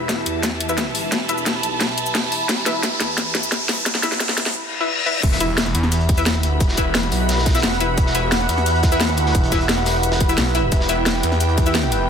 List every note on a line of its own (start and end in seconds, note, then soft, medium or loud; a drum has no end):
0.00 0.25 E1 loud
0.00 4.51 E4 medium
0.00 4.55 G4 medium
0.00 4.51 B4 medium
0.00 4.55 E5 medium
0.00 0.18 B5 medium
0.00 4.52 B5 medium
0.00 riser medium
0.08 4.55 A5 medium
0.08 kick medium
0.08 snare medium
0.08 closed hi-hat medium
0.08 cabasa medium
0.26 1.11 E2 loud
0.26 closed hi-hat medium
0.26 cabasa soft
0.43 kick loud
0.43 snare medium
0.43 closed hi-hat medium
0.43 cabasa medium
0.60 closed hi-hat medium
0.69 0.74 E4 medium
0.69 0.74 B4 medium
0.69 0.74 E5 loud
0.69 cabasa medium
0.78 kick loud
0.78 snare medium
0.78 closed hi-hat medium
0.78 cabasa medium
0.95 open hi-hat medium
1.12 1.62 E1 loud
1.12 kick loud
1.12 snare medium
1.12 closed hi-hat medium
1.12 cabasa soft
1.29 1.37 E4 medium
1.29 1.37 B4 medium
1.29 1.37 E5 medium
1.29 closed hi-hat medium
1.29 cabasa medium
1.38 cabasa soft
1.46 kick medium
1.46 snare medium
1.46 closed hi-hat medium
1.46 cabasa medium
1.63 2.13 B1 loud
1.63 closed hi-hat medium
1.63 cabasa soft
1.80 kick loud
1.80 snare medium
1.80 closed hi-hat medium
1.80 cabasa medium
1.98 closed hi-hat medium
1.98 cabasa soft
2.06 cabasa medium
2.15 2.48 E1 loud
2.15 kick loud
2.15 snare medium
2.15 closed hi-hat medium
2.15 cabasa medium
2.32 open hi-hat medium
2.49 2.99 E1 loud
2.49 kick loud
2.49 snare medium
2.49 closed hi-hat medium
2.49 cabasa medium
2.66 2.71 E4 medium
2.66 2.71 B4 medium
2.66 2.71 E5 loud
2.66 snare medium
2.66 closed hi-hat loud
2.66 cabasa medium
2.83 kick loud
2.83 snare medium
2.83 closed hi-hat medium
2.83 cabasa medium
3.00 3.85 E2 loud
3.00 snare medium
3.00 closed hi-hat loud
3.00 cabasa soft
3.18 kick loud
3.18 snare medium
3.18 closed hi-hat medium
3.18 cabasa medium
3.35 snare medium
3.35 closed hi-hat medium
3.43 cabasa medium
3.52 kick loud
3.52 snare medium
3.52 closed hi-hat medium
3.52 cabasa medium
3.69 snare medium
3.69 open hi-hat medium
3.86 4.36 E1 loud
3.86 kick loud
3.86 snare medium
3.86 closed hi-hat medium
3.86 cabasa medium
3.95 snare medium
4.03 4.11 E4 medium
4.03 4.11 B4 medium
4.03 4.11 E5 medium
4.03 snare medium
4.03 closed hi-hat loud
4.03 cabasa medium
4.12 snare medium
4.12 cabasa soft
4.20 kick loud
4.20 snare loud
4.20 closed hi-hat medium
4.20 cabasa medium
4.29 snare medium
4.38 4.55 E1 loud
4.38 snare loud
4.38 closed hi-hat loud
4.38 cabasa soft
4.46 snare medium
4.55 reverse cymbal medium
4.80 4.85 E4 medium
4.80 4.85 B4 medium
4.80 4.85 E5 medium
5.06 5.14 E4 medium
5.06 5.14 B4 medium
5.06 5.14 E5 loud
5.23 5.73 E1 loud
5.23 12.10 E4 medium
5.23 12.10 G4 medium
5.23 12.10 B4 medium
5.23 10.70 F#5 loud
5.23 kick loud
5.23 closed hi-hat medium
5.23 crash loud
5.23 impact medium
5.23 cabasa soft
5.32 snare soft
5.40 5.45 E4 medium
5.40 5.45 B4 medium
5.40 5.45 E5 loud
5.40 10.91 B5 medium
5.40 closed hi-hat medium
5.40 closed hi-hat loud
5.40 cabasa medium
5.52 12.10 E5 medium
5.57 snare loud
5.57 closed hi-hat medium
5.57 cabasa soft
5.66 snare soft
5.75 6.35 E2 loud
5.75 closed hi-hat medium
5.75 closed hi-hat loud
5.75 cabasa soft
5.83 snare soft
5.83 closed hi-hat soft
5.92 closed hi-hat medium
5.92 cabasa medium
6.00 closed hi-hat soft
6.09 kick loud
6.09 closed hi-hat loud
6.09 open hi-hat medium
6.09 cabasa soft
6.18 6.22 E4 medium
6.18 6.22 B4 medium
6.18 6.22 E5 medium
6.18 cabasa medium
6.26 snare loud
6.26 closed hi-hat medium
6.26 cabasa medium
6.34 6.59 D#2 loud
6.34 snare soft
6.34 closed hi-hat soft
6.43 closed hi-hat loud
6.43 closed hi-hat medium
6.43 cabasa soft
6.60 7.11 E1 loud
6.60 kick loud
6.60 closed hi-hat medium
6.60 cabasa soft
6.68 snare medium
6.77 6.85 E4 medium
6.77 6.85 B4 medium
6.77 6.85 E5 medium
6.77 kick medium
6.77 closed hi-hat medium
6.77 cabasa medium
6.94 snare loud
6.94 closed hi-hat loud
6.94 closed hi-hat medium
6.94 cabasa soft
7.03 snare soft
7.12 7.62 B1 loud
7.12 closed hi-hat medium
7.12 open hi-hat medium
7.12 cabasa soft
7.29 snare loud
7.29 closed hi-hat medium
7.29 cabasa soft
7.37 snare loud
7.37 closed hi-hat medium
7.45 kick loud
7.45 snare medium
7.45 closed hi-hat medium
7.45 closed hi-hat loud
7.45 cabasa soft
7.51 snare medium
7.51 closed hi-hat medium
7.55 7.60 E4 medium
7.55 7.60 B4 medium
7.55 7.60 E5 medium
7.55 snare medium
7.55 closed hi-hat medium
7.55 cabasa medium
7.58 snare medium
7.58 closed hi-hat medium
7.63 7.96 E1 loud
7.63 snare loud
7.63 closed hi-hat medium
7.63 cabasa soft
7.72 closed hi-hat soft
7.80 7.88 E4 medium
7.80 7.88 B4 medium
7.80 7.88 E5 medium
7.80 closed hi-hat medium
7.80 cabasa soft
7.97 8.48 E1 loud
7.97 kick loud
7.97 closed hi-hat loud
7.97 closed hi-hat medium
7.97 cabasa soft
8.06 snare soft
8.15 8.20 E4 medium
8.15 8.20 B4 medium
8.15 8.20 E5 loud
8.15 closed hi-hat medium
8.15 cabasa medium
8.31 snare loud
8.31 closed hi-hat medium
8.31 cabasa soft
8.41 snare soft
8.49 9.09 E2 loud
8.49 closed hi-hat medium
8.49 cabasa soft
8.58 snare soft
8.66 closed hi-hat medium
8.66 closed hi-hat loud
8.66 cabasa soft
8.75 closed hi-hat soft
8.83 kick loud
8.83 snare loud
8.83 closed hi-hat medium
8.83 cabasa soft
8.92 8.97 E4 medium
8.92 8.97 B4 medium
8.92 8.97 E5 loud
8.92 cabasa medium
9.01 snare loud
9.01 closed hi-hat medium
9.01 cabasa soft
9.09 9.33 D#2 loud
9.09 snare soft
9.09 closed hi-hat soft
9.17 closed hi-hat medium
9.17 cabasa soft
9.26 snare soft
9.34 9.85 E1 loud
9.34 kick loud
9.34 closed hi-hat medium
9.34 cabasa soft
9.43 closed hi-hat medium
9.52 9.60 E4 medium
9.52 9.60 B4 medium
9.52 9.60 E5 medium
9.52 kick medium
9.52 snare soft
9.52 closed hi-hat medium
9.52 cabasa medium
9.61 closed hi-hat medium
9.69 snare loud
9.69 closed hi-hat medium
9.69 cabasa medium
9.78 snare soft
9.86 10.36 E1 loud
9.86 snare loud
9.86 closed hi-hat medium
9.86 open hi-hat medium
9.86 cabasa soft
9.94 closed hi-hat soft
10.03 closed hi-hat medium
10.03 cabasa soft
10.12 snare loud
10.12 closed hi-hat medium
10.21 kick loud
10.21 closed hi-hat medium
10.21 cabasa soft
10.29 10.34 E4 medium
10.29 10.34 B4 medium
10.29 10.34 E5 medium
10.29 closed hi-hat medium
10.29 cabasa medium
10.37 10.71 B1 loud
10.37 snare loud
10.37 closed hi-hat medium
10.37 cabasa soft
10.46 closed hi-hat soft
10.55 10.62 E4 medium
10.55 10.63 B4 medium
10.55 10.63 E5 loud
10.55 closed hi-hat medium
10.55 cabasa soft
10.72 11.22 E1 loud
10.72 12.10 G5 medium
10.72 kick loud
10.72 closed hi-hat medium
10.72 cabasa soft
10.80 snare medium
10.89 10.94 E4 medium
10.89 10.94 B4 medium
10.89 10.94 E5 loud
10.89 12.10 G5 medium
10.89 closed hi-hat medium
10.89 cabasa medium
11.05 snare loud
11.05 closed hi-hat loud
11.05 closed hi-hat medium
11.05 cabasa soft
11.15 snare soft
11.23 12.08 E2 loud
11.23 closed hi-hat medium
11.23 cabasa soft
11.32 snare soft
11.32 closed hi-hat soft
11.40 closed hi-hat medium
11.40 cabasa medium
11.49 closed hi-hat soft
11.58 kick loud
11.58 closed hi-hat medium
11.58 open hi-hat medium
11.58 cabasa soft
11.66 11.71 E4 medium
11.66 11.71 B4 medium
11.66 11.71 E5 loud
11.66 cabasa medium
11.74 snare loud
11.74 closed hi-hat medium
11.74 cabasa medium
11.83 snare soft
11.83 closed hi-hat soft
11.92 closed hi-hat medium
11.92 cabasa soft